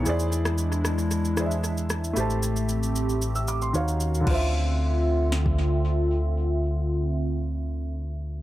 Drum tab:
CC |----------------|----------------|x---------------|----------------|
SH |xxxxxxxxxxxxxxxx|xxxxxxxxxxxxxxxx|----------------|----------------|
SD |---r--r---r---r-|----------------|--------o-------|----------------|
BD |----------------|----------------|o--------o------|----------------|